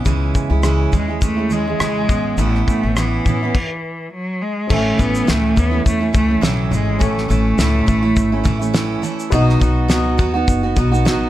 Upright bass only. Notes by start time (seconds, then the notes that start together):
0.06 C#2
0.50 C#2
0.93 D#2
1.80 E2
2.10 A1
2.38 A1
2.84 A1
3.26 A2
4.70 A1
4.99 A1
5.29 C#2
5.57 D#2
5.86 E2
6.14 C#2
6.42 B1
6.71 G#1
7.01 A1
7.30 A1
7.58 C#2
7.88 A1
8.17 G#1
8.46 A1
9.33 B1
9.61 B1
9.90 C#2
10.19 D#2
10.48 F#1
10.76 B1
11.07 A1